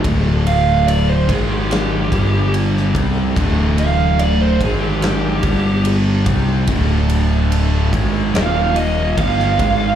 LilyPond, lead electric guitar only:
\new Staff \with { instrumentName = "Lead electric guitar" } { \time 4/4 \key g \mixolydian \tempo 4 = 72 r8 f''8 d''16 c''16 gis'16 g'16 g'4 r4 | r8 f''8 d''16 c''16 gis'16 g'16 g'4 r4 | r2 f''8 ees''8 f''4 | }